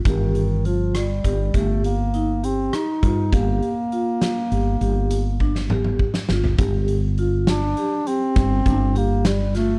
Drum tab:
HH |x-x-x-x-x-x-x-x-x-x-x-|x-x-x-x-x-x-x---------|x-x-x-x-x-x-x-x-x-x-x-|
SD |------r-----------r---|------o--------o---oo-|------o-----o-----o-o-|
T2 |----------------------|----------------oo----|----------------------|
FT |----------------------|---------------------o|----------------------|
BD |o-------o-o---------o-|o-------------o---o---|o-----------o-o-------|